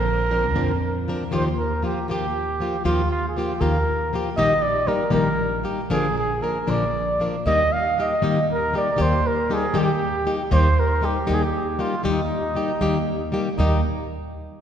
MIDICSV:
0, 0, Header, 1, 5, 480
1, 0, Start_track
1, 0, Key_signature, -3, "major"
1, 0, Tempo, 511073
1, 1242, Time_signature, 6, 3, 24, 8
1, 13722, End_track
2, 0, Start_track
2, 0, Title_t, "Trumpet"
2, 0, Program_c, 0, 56
2, 0, Note_on_c, 0, 70, 94
2, 1008, Note_off_c, 0, 70, 0
2, 1255, Note_on_c, 0, 72, 78
2, 1362, Note_off_c, 0, 72, 0
2, 1484, Note_on_c, 0, 70, 72
2, 1707, Note_off_c, 0, 70, 0
2, 1741, Note_on_c, 0, 67, 61
2, 1956, Note_off_c, 0, 67, 0
2, 1972, Note_on_c, 0, 67, 83
2, 2650, Note_off_c, 0, 67, 0
2, 2679, Note_on_c, 0, 65, 80
2, 2907, Note_off_c, 0, 65, 0
2, 2922, Note_on_c, 0, 65, 84
2, 3080, Note_off_c, 0, 65, 0
2, 3086, Note_on_c, 0, 68, 45
2, 3165, Note_on_c, 0, 67, 72
2, 3180, Note_off_c, 0, 68, 0
2, 3389, Note_on_c, 0, 70, 92
2, 3403, Note_off_c, 0, 67, 0
2, 3927, Note_off_c, 0, 70, 0
2, 4101, Note_on_c, 0, 75, 106
2, 4340, Note_on_c, 0, 74, 91
2, 4354, Note_off_c, 0, 75, 0
2, 4579, Note_on_c, 0, 70, 78
2, 4593, Note_off_c, 0, 74, 0
2, 4814, Note_off_c, 0, 70, 0
2, 4820, Note_on_c, 0, 70, 91
2, 5262, Note_off_c, 0, 70, 0
2, 5552, Note_on_c, 0, 68, 89
2, 5778, Note_off_c, 0, 68, 0
2, 5809, Note_on_c, 0, 68, 85
2, 6035, Note_on_c, 0, 70, 78
2, 6049, Note_off_c, 0, 68, 0
2, 6296, Note_on_c, 0, 74, 94
2, 6310, Note_off_c, 0, 70, 0
2, 6830, Note_off_c, 0, 74, 0
2, 7009, Note_on_c, 0, 75, 104
2, 7254, Note_on_c, 0, 77, 93
2, 7268, Note_off_c, 0, 75, 0
2, 7488, Note_off_c, 0, 77, 0
2, 7517, Note_on_c, 0, 75, 82
2, 7950, Note_off_c, 0, 75, 0
2, 7999, Note_on_c, 0, 70, 92
2, 8205, Note_off_c, 0, 70, 0
2, 8233, Note_on_c, 0, 74, 79
2, 8469, Note_on_c, 0, 72, 85
2, 8483, Note_off_c, 0, 74, 0
2, 8706, Note_on_c, 0, 70, 87
2, 8720, Note_off_c, 0, 72, 0
2, 8955, Note_on_c, 0, 68, 75
2, 8969, Note_off_c, 0, 70, 0
2, 9185, Note_on_c, 0, 67, 96
2, 9199, Note_off_c, 0, 68, 0
2, 9713, Note_off_c, 0, 67, 0
2, 9889, Note_on_c, 0, 72, 96
2, 10141, Note_on_c, 0, 70, 89
2, 10155, Note_off_c, 0, 72, 0
2, 10378, Note_on_c, 0, 67, 76
2, 10392, Note_off_c, 0, 70, 0
2, 10605, Note_off_c, 0, 67, 0
2, 10613, Note_on_c, 0, 67, 91
2, 10652, Note_on_c, 0, 68, 80
2, 10666, Note_off_c, 0, 67, 0
2, 10738, Note_on_c, 0, 67, 77
2, 10752, Note_off_c, 0, 68, 0
2, 11086, Note_on_c, 0, 65, 71
2, 11100, Note_off_c, 0, 67, 0
2, 11309, Note_off_c, 0, 65, 0
2, 11315, Note_on_c, 0, 63, 85
2, 12480, Note_off_c, 0, 63, 0
2, 12747, Note_on_c, 0, 63, 80
2, 12980, Note_off_c, 0, 63, 0
2, 13722, End_track
3, 0, Start_track
3, 0, Title_t, "Violin section"
3, 0, Program_c, 1, 48
3, 0, Note_on_c, 1, 58, 55
3, 0, Note_on_c, 1, 62, 60
3, 0, Note_on_c, 1, 72, 71
3, 1207, Note_off_c, 1, 58, 0
3, 1213, Note_off_c, 1, 72, 0
3, 1218, Note_off_c, 1, 62, 0
3, 13722, End_track
4, 0, Start_track
4, 0, Title_t, "Nylon-string guitar"
4, 0, Program_c, 2, 24
4, 285, Note_on_c, 2, 53, 39
4, 289, Note_on_c, 2, 60, 48
4, 293, Note_on_c, 2, 70, 50
4, 295, Note_on_c, 2, 62, 45
4, 425, Note_off_c, 2, 53, 0
4, 427, Note_off_c, 2, 60, 0
4, 430, Note_off_c, 2, 62, 0
4, 430, Note_off_c, 2, 70, 0
4, 518, Note_on_c, 2, 46, 63
4, 520, Note_on_c, 2, 50, 62
4, 520, Note_on_c, 2, 53, 60
4, 522, Note_on_c, 2, 60, 71
4, 523, Note_on_c, 2, 62, 66
4, 527, Note_on_c, 2, 70, 65
4, 666, Note_off_c, 2, 46, 0
4, 667, Note_off_c, 2, 50, 0
4, 667, Note_off_c, 2, 53, 0
4, 668, Note_off_c, 2, 60, 0
4, 668, Note_off_c, 2, 62, 0
4, 670, Note_off_c, 2, 70, 0
4, 1014, Note_on_c, 2, 53, 53
4, 1021, Note_on_c, 2, 60, 52
4, 1028, Note_on_c, 2, 62, 49
4, 1028, Note_on_c, 2, 70, 61
4, 1152, Note_off_c, 2, 53, 0
4, 1155, Note_off_c, 2, 60, 0
4, 1159, Note_off_c, 2, 62, 0
4, 1159, Note_off_c, 2, 70, 0
4, 1231, Note_on_c, 2, 51, 60
4, 1242, Note_on_c, 2, 53, 66
4, 1245, Note_on_c, 2, 67, 76
4, 1246, Note_on_c, 2, 65, 76
4, 1247, Note_on_c, 2, 58, 73
4, 1384, Note_off_c, 2, 51, 0
4, 1389, Note_off_c, 2, 53, 0
4, 1391, Note_off_c, 2, 65, 0
4, 1391, Note_off_c, 2, 67, 0
4, 1392, Note_off_c, 2, 58, 0
4, 1714, Note_on_c, 2, 53, 58
4, 1723, Note_on_c, 2, 58, 43
4, 1724, Note_on_c, 2, 65, 44
4, 1735, Note_on_c, 2, 67, 47
4, 1863, Note_off_c, 2, 53, 0
4, 1868, Note_off_c, 2, 58, 0
4, 1868, Note_off_c, 2, 65, 0
4, 1874, Note_off_c, 2, 67, 0
4, 1965, Note_on_c, 2, 53, 65
4, 1968, Note_on_c, 2, 58, 64
4, 1969, Note_on_c, 2, 51, 52
4, 1981, Note_on_c, 2, 65, 69
4, 1982, Note_on_c, 2, 67, 70
4, 2112, Note_off_c, 2, 53, 0
4, 2113, Note_off_c, 2, 58, 0
4, 2114, Note_off_c, 2, 51, 0
4, 2120, Note_off_c, 2, 65, 0
4, 2121, Note_off_c, 2, 67, 0
4, 2443, Note_on_c, 2, 53, 52
4, 2452, Note_on_c, 2, 58, 53
4, 2456, Note_on_c, 2, 67, 57
4, 2461, Note_on_c, 2, 65, 53
4, 2587, Note_off_c, 2, 53, 0
4, 2592, Note_off_c, 2, 58, 0
4, 2594, Note_off_c, 2, 67, 0
4, 2597, Note_off_c, 2, 65, 0
4, 2673, Note_on_c, 2, 51, 68
4, 2677, Note_on_c, 2, 53, 73
4, 2679, Note_on_c, 2, 58, 80
4, 2680, Note_on_c, 2, 65, 82
4, 2684, Note_on_c, 2, 67, 91
4, 2824, Note_off_c, 2, 51, 0
4, 2827, Note_off_c, 2, 53, 0
4, 2828, Note_off_c, 2, 58, 0
4, 2828, Note_off_c, 2, 65, 0
4, 2830, Note_off_c, 2, 67, 0
4, 3161, Note_on_c, 2, 53, 53
4, 3170, Note_on_c, 2, 58, 52
4, 3175, Note_on_c, 2, 65, 51
4, 3182, Note_on_c, 2, 67, 57
4, 3303, Note_off_c, 2, 53, 0
4, 3307, Note_off_c, 2, 58, 0
4, 3309, Note_off_c, 2, 65, 0
4, 3313, Note_off_c, 2, 67, 0
4, 3388, Note_on_c, 2, 51, 66
4, 3389, Note_on_c, 2, 58, 63
4, 3395, Note_on_c, 2, 53, 62
4, 3395, Note_on_c, 2, 67, 73
4, 3399, Note_on_c, 2, 65, 75
4, 3537, Note_off_c, 2, 51, 0
4, 3537, Note_off_c, 2, 58, 0
4, 3540, Note_off_c, 2, 53, 0
4, 3540, Note_off_c, 2, 67, 0
4, 3542, Note_off_c, 2, 65, 0
4, 3878, Note_on_c, 2, 53, 52
4, 3885, Note_on_c, 2, 58, 64
4, 3892, Note_on_c, 2, 65, 51
4, 3901, Note_on_c, 2, 67, 68
4, 4015, Note_off_c, 2, 53, 0
4, 4019, Note_off_c, 2, 58, 0
4, 4023, Note_off_c, 2, 65, 0
4, 4027, Note_off_c, 2, 67, 0
4, 4110, Note_on_c, 2, 51, 80
4, 4111, Note_on_c, 2, 58, 73
4, 4112, Note_on_c, 2, 46, 76
4, 4113, Note_on_c, 2, 55, 73
4, 4117, Note_on_c, 2, 63, 85
4, 4121, Note_on_c, 2, 67, 94
4, 4254, Note_off_c, 2, 51, 0
4, 4254, Note_off_c, 2, 58, 0
4, 4255, Note_off_c, 2, 46, 0
4, 4255, Note_off_c, 2, 55, 0
4, 4257, Note_off_c, 2, 63, 0
4, 4259, Note_off_c, 2, 67, 0
4, 4573, Note_on_c, 2, 55, 57
4, 4575, Note_on_c, 2, 58, 54
4, 4585, Note_on_c, 2, 63, 62
4, 4585, Note_on_c, 2, 67, 62
4, 4722, Note_off_c, 2, 55, 0
4, 4722, Note_off_c, 2, 58, 0
4, 4727, Note_off_c, 2, 63, 0
4, 4728, Note_off_c, 2, 67, 0
4, 4793, Note_on_c, 2, 46, 73
4, 4794, Note_on_c, 2, 51, 70
4, 4795, Note_on_c, 2, 55, 75
4, 4801, Note_on_c, 2, 58, 83
4, 4804, Note_on_c, 2, 63, 64
4, 4809, Note_on_c, 2, 67, 81
4, 4955, Note_off_c, 2, 46, 0
4, 4955, Note_off_c, 2, 51, 0
4, 4956, Note_off_c, 2, 55, 0
4, 4959, Note_off_c, 2, 58, 0
4, 4960, Note_off_c, 2, 63, 0
4, 4963, Note_off_c, 2, 67, 0
4, 5289, Note_on_c, 2, 55, 49
4, 5293, Note_on_c, 2, 58, 59
4, 5304, Note_on_c, 2, 67, 57
4, 5307, Note_on_c, 2, 63, 64
4, 5441, Note_off_c, 2, 55, 0
4, 5443, Note_off_c, 2, 58, 0
4, 5449, Note_off_c, 2, 67, 0
4, 5450, Note_off_c, 2, 63, 0
4, 5541, Note_on_c, 2, 46, 78
4, 5543, Note_on_c, 2, 53, 84
4, 5549, Note_on_c, 2, 50, 72
4, 5552, Note_on_c, 2, 70, 84
4, 5553, Note_on_c, 2, 58, 74
4, 5553, Note_on_c, 2, 62, 87
4, 5691, Note_off_c, 2, 46, 0
4, 5692, Note_off_c, 2, 53, 0
4, 5695, Note_off_c, 2, 50, 0
4, 5697, Note_off_c, 2, 58, 0
4, 5697, Note_off_c, 2, 62, 0
4, 5697, Note_off_c, 2, 70, 0
4, 6020, Note_on_c, 2, 53, 51
4, 6034, Note_on_c, 2, 58, 52
4, 6041, Note_on_c, 2, 62, 48
4, 6045, Note_on_c, 2, 70, 63
4, 6170, Note_off_c, 2, 53, 0
4, 6177, Note_off_c, 2, 58, 0
4, 6180, Note_off_c, 2, 62, 0
4, 6182, Note_off_c, 2, 70, 0
4, 6264, Note_on_c, 2, 46, 57
4, 6266, Note_on_c, 2, 50, 55
4, 6269, Note_on_c, 2, 58, 74
4, 6269, Note_on_c, 2, 62, 66
4, 6273, Note_on_c, 2, 53, 66
4, 6276, Note_on_c, 2, 70, 67
4, 6416, Note_off_c, 2, 46, 0
4, 6417, Note_off_c, 2, 50, 0
4, 6419, Note_off_c, 2, 58, 0
4, 6419, Note_off_c, 2, 62, 0
4, 6421, Note_off_c, 2, 53, 0
4, 6422, Note_off_c, 2, 70, 0
4, 6760, Note_on_c, 2, 53, 51
4, 6770, Note_on_c, 2, 58, 56
4, 6772, Note_on_c, 2, 62, 49
4, 6776, Note_on_c, 2, 70, 48
4, 6903, Note_off_c, 2, 53, 0
4, 6908, Note_off_c, 2, 58, 0
4, 6909, Note_off_c, 2, 62, 0
4, 6911, Note_off_c, 2, 70, 0
4, 7013, Note_on_c, 2, 51, 71
4, 7013, Note_on_c, 2, 58, 73
4, 7019, Note_on_c, 2, 63, 77
4, 7021, Note_on_c, 2, 55, 83
4, 7023, Note_on_c, 2, 67, 76
4, 7153, Note_off_c, 2, 51, 0
4, 7153, Note_off_c, 2, 58, 0
4, 7156, Note_off_c, 2, 63, 0
4, 7157, Note_off_c, 2, 55, 0
4, 7158, Note_off_c, 2, 67, 0
4, 7490, Note_on_c, 2, 55, 50
4, 7494, Note_on_c, 2, 58, 53
4, 7501, Note_on_c, 2, 63, 46
4, 7511, Note_on_c, 2, 67, 52
4, 7629, Note_off_c, 2, 55, 0
4, 7631, Note_off_c, 2, 58, 0
4, 7635, Note_off_c, 2, 63, 0
4, 7640, Note_off_c, 2, 67, 0
4, 7721, Note_on_c, 2, 51, 66
4, 7721, Note_on_c, 2, 55, 69
4, 7722, Note_on_c, 2, 58, 66
4, 7731, Note_on_c, 2, 63, 76
4, 7739, Note_on_c, 2, 67, 70
4, 7868, Note_off_c, 2, 51, 0
4, 7868, Note_off_c, 2, 55, 0
4, 7868, Note_off_c, 2, 58, 0
4, 7873, Note_off_c, 2, 63, 0
4, 7877, Note_off_c, 2, 67, 0
4, 8196, Note_on_c, 2, 55, 56
4, 8208, Note_on_c, 2, 58, 48
4, 8209, Note_on_c, 2, 63, 53
4, 8220, Note_on_c, 2, 67, 67
4, 8343, Note_off_c, 2, 55, 0
4, 8349, Note_off_c, 2, 58, 0
4, 8349, Note_off_c, 2, 63, 0
4, 8355, Note_off_c, 2, 67, 0
4, 8418, Note_on_c, 2, 51, 70
4, 8425, Note_on_c, 2, 55, 72
4, 8428, Note_on_c, 2, 58, 68
4, 8431, Note_on_c, 2, 63, 86
4, 8434, Note_on_c, 2, 67, 86
4, 8577, Note_off_c, 2, 51, 0
4, 8580, Note_off_c, 2, 55, 0
4, 8582, Note_off_c, 2, 58, 0
4, 8584, Note_off_c, 2, 63, 0
4, 8585, Note_off_c, 2, 67, 0
4, 8921, Note_on_c, 2, 55, 49
4, 8927, Note_on_c, 2, 63, 59
4, 8930, Note_on_c, 2, 67, 60
4, 8933, Note_on_c, 2, 58, 57
4, 9065, Note_off_c, 2, 55, 0
4, 9068, Note_off_c, 2, 63, 0
4, 9069, Note_off_c, 2, 67, 0
4, 9071, Note_off_c, 2, 58, 0
4, 9145, Note_on_c, 2, 51, 73
4, 9146, Note_on_c, 2, 55, 70
4, 9149, Note_on_c, 2, 58, 70
4, 9156, Note_on_c, 2, 63, 70
4, 9156, Note_on_c, 2, 67, 77
4, 9300, Note_off_c, 2, 51, 0
4, 9300, Note_off_c, 2, 55, 0
4, 9302, Note_off_c, 2, 58, 0
4, 9305, Note_off_c, 2, 63, 0
4, 9305, Note_off_c, 2, 67, 0
4, 9632, Note_on_c, 2, 55, 57
4, 9640, Note_on_c, 2, 58, 60
4, 9643, Note_on_c, 2, 67, 65
4, 9648, Note_on_c, 2, 63, 54
4, 9779, Note_off_c, 2, 55, 0
4, 9783, Note_off_c, 2, 58, 0
4, 9785, Note_off_c, 2, 67, 0
4, 9787, Note_off_c, 2, 63, 0
4, 9872, Note_on_c, 2, 55, 82
4, 9874, Note_on_c, 2, 51, 78
4, 9875, Note_on_c, 2, 58, 88
4, 9879, Note_on_c, 2, 63, 92
4, 9881, Note_on_c, 2, 67, 78
4, 10022, Note_off_c, 2, 55, 0
4, 10023, Note_off_c, 2, 51, 0
4, 10023, Note_off_c, 2, 58, 0
4, 10026, Note_off_c, 2, 63, 0
4, 10027, Note_off_c, 2, 67, 0
4, 10343, Note_on_c, 2, 55, 52
4, 10351, Note_on_c, 2, 58, 52
4, 10355, Note_on_c, 2, 63, 59
4, 10362, Note_on_c, 2, 67, 64
4, 10493, Note_off_c, 2, 55, 0
4, 10497, Note_off_c, 2, 58, 0
4, 10499, Note_off_c, 2, 63, 0
4, 10503, Note_off_c, 2, 67, 0
4, 10581, Note_on_c, 2, 51, 62
4, 10582, Note_on_c, 2, 55, 59
4, 10585, Note_on_c, 2, 58, 73
4, 10586, Note_on_c, 2, 63, 83
4, 10586, Note_on_c, 2, 67, 65
4, 10734, Note_off_c, 2, 51, 0
4, 10734, Note_off_c, 2, 55, 0
4, 10736, Note_off_c, 2, 58, 0
4, 10736, Note_off_c, 2, 63, 0
4, 10736, Note_off_c, 2, 67, 0
4, 11071, Note_on_c, 2, 55, 60
4, 11071, Note_on_c, 2, 63, 60
4, 11076, Note_on_c, 2, 58, 59
4, 11083, Note_on_c, 2, 67, 62
4, 11214, Note_off_c, 2, 55, 0
4, 11214, Note_off_c, 2, 63, 0
4, 11216, Note_off_c, 2, 58, 0
4, 11220, Note_off_c, 2, 67, 0
4, 11300, Note_on_c, 2, 51, 75
4, 11305, Note_on_c, 2, 55, 81
4, 11317, Note_on_c, 2, 58, 86
4, 11317, Note_on_c, 2, 67, 83
4, 11318, Note_on_c, 2, 63, 77
4, 11451, Note_off_c, 2, 51, 0
4, 11454, Note_off_c, 2, 55, 0
4, 11460, Note_off_c, 2, 58, 0
4, 11460, Note_off_c, 2, 63, 0
4, 11460, Note_off_c, 2, 67, 0
4, 11788, Note_on_c, 2, 55, 44
4, 11799, Note_on_c, 2, 63, 54
4, 11801, Note_on_c, 2, 58, 48
4, 11801, Note_on_c, 2, 67, 65
4, 11933, Note_off_c, 2, 55, 0
4, 11938, Note_off_c, 2, 63, 0
4, 11939, Note_off_c, 2, 58, 0
4, 11939, Note_off_c, 2, 67, 0
4, 12031, Note_on_c, 2, 55, 69
4, 12032, Note_on_c, 2, 58, 74
4, 12034, Note_on_c, 2, 63, 86
4, 12037, Note_on_c, 2, 51, 68
4, 12043, Note_on_c, 2, 67, 90
4, 12178, Note_off_c, 2, 55, 0
4, 12178, Note_off_c, 2, 58, 0
4, 12179, Note_off_c, 2, 63, 0
4, 12181, Note_off_c, 2, 51, 0
4, 12183, Note_off_c, 2, 67, 0
4, 12510, Note_on_c, 2, 55, 64
4, 12525, Note_on_c, 2, 58, 63
4, 12525, Note_on_c, 2, 67, 67
4, 12530, Note_on_c, 2, 63, 57
4, 12657, Note_off_c, 2, 55, 0
4, 12664, Note_off_c, 2, 58, 0
4, 12664, Note_off_c, 2, 67, 0
4, 12667, Note_off_c, 2, 63, 0
4, 12753, Note_on_c, 2, 51, 82
4, 12761, Note_on_c, 2, 55, 85
4, 12769, Note_on_c, 2, 58, 86
4, 12770, Note_on_c, 2, 63, 88
4, 12777, Note_on_c, 2, 67, 74
4, 12952, Note_off_c, 2, 51, 0
4, 12956, Note_off_c, 2, 55, 0
4, 12960, Note_off_c, 2, 58, 0
4, 12960, Note_off_c, 2, 63, 0
4, 12964, Note_off_c, 2, 67, 0
4, 13722, End_track
5, 0, Start_track
5, 0, Title_t, "Upright bass"
5, 0, Program_c, 3, 32
5, 0, Note_on_c, 3, 34, 87
5, 517, Note_off_c, 3, 34, 0
5, 517, Note_on_c, 3, 41, 71
5, 988, Note_off_c, 3, 41, 0
5, 1237, Note_on_c, 3, 39, 86
5, 1708, Note_off_c, 3, 39, 0
5, 1954, Note_on_c, 3, 39, 72
5, 2425, Note_off_c, 3, 39, 0
5, 2676, Note_on_c, 3, 39, 72
5, 3142, Note_off_c, 3, 39, 0
5, 3392, Note_on_c, 3, 39, 73
5, 3855, Note_off_c, 3, 39, 0
5, 4107, Note_on_c, 3, 34, 80
5, 4572, Note_off_c, 3, 34, 0
5, 4821, Note_on_c, 3, 34, 84
5, 5291, Note_off_c, 3, 34, 0
5, 5543, Note_on_c, 3, 34, 82
5, 6016, Note_off_c, 3, 34, 0
5, 6270, Note_on_c, 3, 34, 72
5, 6742, Note_off_c, 3, 34, 0
5, 7004, Note_on_c, 3, 39, 81
5, 7472, Note_off_c, 3, 39, 0
5, 7722, Note_on_c, 3, 39, 74
5, 8190, Note_off_c, 3, 39, 0
5, 8447, Note_on_c, 3, 39, 92
5, 8913, Note_off_c, 3, 39, 0
5, 9155, Note_on_c, 3, 39, 84
5, 9624, Note_off_c, 3, 39, 0
5, 9879, Note_on_c, 3, 39, 95
5, 10345, Note_off_c, 3, 39, 0
5, 10606, Note_on_c, 3, 39, 89
5, 11067, Note_off_c, 3, 39, 0
5, 11315, Note_on_c, 3, 39, 86
5, 11781, Note_off_c, 3, 39, 0
5, 12030, Note_on_c, 3, 39, 82
5, 12502, Note_off_c, 3, 39, 0
5, 12760, Note_on_c, 3, 39, 86
5, 12988, Note_off_c, 3, 39, 0
5, 13722, End_track
0, 0, End_of_file